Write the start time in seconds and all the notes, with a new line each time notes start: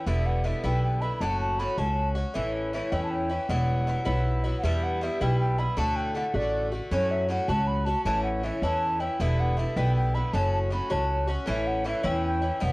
0.07 E1 G2 D3 B3 E4 E5
0.26 F#5
0.44 G2 D3 B3 E4 E5
0.64 B1 G2 D3 B3 E4 G5
0.83 G5
1.01 D3 B3 E4 B5
1.16 B5
1.21 F#1 A2 F#3 C#4 F#4 A5
1.40 A5
1.59 A2 F#3 C#4 F#4 B5
1.78 C#2 A2 F#3 C#4 F#4 A5
2.15 F#3 C#4 F#4
2.34 A1 A2 E3 C#4 E4 E5
2.72 A2 E3 C#4 E4 E5
2.91 E2 A2 E3 C#4 E4 G5
3.03 A5
3.10 G5
3.29 E3 C#4 E4
3.49 E1 G2 F#3 B3 E4 F#5
3.87 G2 F#3 B3 E4
4.05 B1 G2 F#3 B3 E4
4.44 F#3 B3 E4
4.58 F#5
4.63 E2 G2 G3 B3 E4 E5
4.83 F#5
5.01 G2 G3 B3 E4 E5
5.21 B1 G2 G3 B3 E4 G5
5.40 G5
5.58 G3 B3 E4 B5
5.77 D2 A2 D3 A3 F#4 A5
5.96 G5
6.15 A2 D3 A3 F#4 F#5
6.34 A1 A2 D3 A3 F#4 D5
6.72 D3 A3 F#4
6.91 F#2 A2 F#3 C#4 F#4 C#5
7.11 E5
7.28 A2 F#3 C#4 F#4 F#5
7.48 C#2 A2 F#3 C#4 F#4 A5
7.67 B5
7.85 F#3 C#4 F#4 A5
8.05 A1 A2 E3 C#4 E4 A5
8.23 F#5
8.43 A2 E3 C#4 E4 E5
8.62 E2 A2 E3 C#4 E4 A5
9.00 E3 C#4 E4 G5
9.20 E1 G2 D3 B3 E4 E5
9.40 F#5
9.57 G2 D3 B3 E4 E5
9.77 B1 G2 D3 B3 E4 G5
9.96 G5
10.15 D3 B3 E4 B5
10.33 F#1 A2 F#3 C#4 F#4 A5
10.53 A5
10.70 A2 F#3 C#4 F#4 B5
10.90 C#2 A2 F#3 C#4 F#4 A5
11.27 F#3 C#4 F#4
11.46 A1 A2 E3 C#4 E4 E5
11.67 F#5
11.84 A2 E3 C#4 E4 E5
12.03 E2 A2 E3 C#4 E4 G5
12.26 G5
12.42 E3 C#4 E4
12.60 E1 G2 F#3 B3 E4 F#5